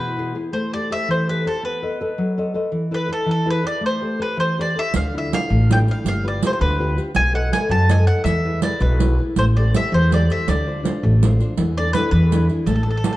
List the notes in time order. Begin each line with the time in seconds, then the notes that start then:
Already playing: B2 B4
0.17 B3 E4 G#4
0.35 B3 E4 G#4
0.53 A3 C5
0.73 G4 A4 C5 D5
0.90 G4 A4 C5 E5
1.08 E3 C5
1.29 G4 A4 B4 C5
1.46 G4 A4 C5
1.63 B3 B4
1.82 A4 B4 D#5
2.01 A4 B4 D#5
2.18 F#3
2.38 A4 B4 D#5
2.54 A4 B4 D#5
2.72 E3
2.91 E4 A4 B4
3.08 E4 A4 B4
3.13 A4
3.26 E3
3.31 A4
3.46 E4 G#4 B4
3.50 B4
3.64 E4 G#4 B4 D5
3.81 A3
3.86 C5
4.01 G4 A4 C5
4.19 G4 A4 B4 C5
4.37 E3 C5
4.58 G4 A4 C5 D5
4.76 G4 A4 C5 E5
4.94 D2 D3 F5, riq
5.14 D4 E4 F4 E5
5.31 D4 F4 F5, riq
5.50 A1 A3
5.69 D4 E4 F4 G5, riq
5.87 D4 E4 F4, riq
5.91 F5
6.04 G1 G3, riq
6.08 F5
6.23 F4 G4 B4
6.28 D5
6.43 F4 G4 B4 C5, riq
6.53 C5
6.60 D2 D3 B4
6.79 F4 G4 B4
6.96 F4 G4 B4, riq
7.14 B1 B3 G#5, riq
7.33 A4 B4 D#5 F#5
7.52 A4 B4 D#5 G#5, riq
7.69 F#2 F#3 A5
7.89 A4 B4 D#5 G#5, riq
8.07 A4 B4 D#5 F#5, riq
8.24 E2 E3 E5, riq
8.45 E4 G#4 B4
8.62 E4 G#4 B4 D5, riq
8.80 B1 B2 B4, riq
8.99 E4 G#4 B4, riq
9.18 E4 G#4 B4
9.36 A1 A3 C5, riq
9.57 G4 A4 C5 D5
9.74 G4 A4 C5 E5, riq
9.92 E2 E3 C5
10.11 G4 A4 C5 D5, riq
10.29 G4 A4 C5 E5, riq
10.47 D2 D3 D5, riq
10.66 D4 F4 C5
10.83 D4 F4 C5, riq
11.03 A1 A3
11.23 D4 F4 C5, riq
11.40 D4 F4 C5, riq
11.57 E2 E3, riq
11.78 D4 E4 A4 D5
11.93 D4 E4 A4 B4, riq
12.11 E2 E3 B4
12.32 D4 E4 G#4, riq
12.49 D4 E4 G#4, riq
12.66 A1 A3 A4, riq
12.76 A4
12.83 A4 B4 C5
12.91 A4
12.97 A4
13.04 A4 B4 C5, riq
13.13 A4